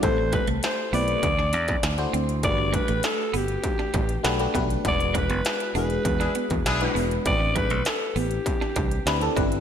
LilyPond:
<<
  \new Staff \with { instrumentName = "Alto saxophone" } { \time 4/4 \key a \dorian \tempo 4 = 100 c''8 b'8 c''8 d''2 r8 | d''8 b'8 a'8 g'2 r8 | d''8 b'4 b'4. r4 | d''8 b'8 a'8 g'2 r8 | }
  \new Staff \with { instrumentName = "FM electric piano" } { \time 4/4 \key a \dorian <a c' e' g' a'>4~ <a c' e' g' a'>16 r16 <a c' e' g' b'>8 r4 r16 <a d' e' fis' c''>8. | <a d' fis' g' ais' b'>4.~ <a d' fis' g' ais' b'>16 r4 r16 <a d' fis' g' b'>16 <a d' fis' g' b'>16 <a d' fis' g' b'>8 | <gis d' e' fis' b'>4~ <gis d' e' fis' b'>16 r16 <gis d' e' fis' gis'>4. r16 <gis d' e' fis' b'>8. | <c' d' e' g' b'>4.~ <c' d' e' g' b'>16 r4 r16 <c' d' e' g' b'>16 <c' d' e' g' a'>16 <c' d' e' g' b'>8 | }
  \new Staff \with { instrumentName = "Horn section" } { \time 4/4 \key a \dorian r1 | r1 | r2 r16 <d' e' gis'>16 r8 <d' e' gis'>8. r16 | r1 | }
  \new Staff \with { instrumentName = "Clean electric guitar" } { \time 4/4 \key a \dorian r8 g16 a16 r8 b16 r8 d'16 d'16 r8. c'16 r16 | r8 g16 a16 r8 b16 r8 d'16 d'16 r8. b16 r16 | r8 gis16 b16 r8 d'16 r8 d'16 b16 r8. b16 r16 | r8 g16 a16 r8 b16 r8 d'16 d'16 r8. c'16 r16 | }
  \new Staff \with { instrumentName = "Fingered electric bass" } { \clef bass \time 4/4 \key a \dorian a,,8. c,16 r8 b,,8 d,8 e,8 d,8 d,8 | g,,8. a,,16 r8 g,,8 r8 a,,8 b,,8 b,,8 | e,,8. fis,,16 r8 e,,8 e,8 r16 e,16 b,,8 e,,8 | a,,8. b,,16 r8 a,,8 r8 c,8 d,8 g,,8 | }
  \new DrumStaff \with { instrumentName = "Drums" } \drummode { \time 4/4 <hh bd>8 <hh bd>16 hh16 <hh sn>8 hho16 hh16 <hh bd>16 sn16 hh16 <hh bd>16 <hh sn>16 hh16 hh16 hh16 | <hh bd>8 <hh bd>16 hh16 <hh sn>8 hho16 hh16 <hh bd>16 sn16 <hh bd>16 hh16 <hh sn>16 hh16 <hh bd>16 hh16 | <hh bd>16 hh16 <hh bd>16 hh16 <hh sn>16 hh16 hho16 hh16 <hh bd>16 <hh sn>16 hh16 <hh bd>16 <hh sn>16 hh16 hho16 hh16 | <hh bd>8 <hh bd>16 hh16 <hh sn>8 hho16 hh16 <hh bd>16 sn16 <hh bd>16 hh16 <hh sn>16 hh16 <hh bd>16 hh16 | }
>>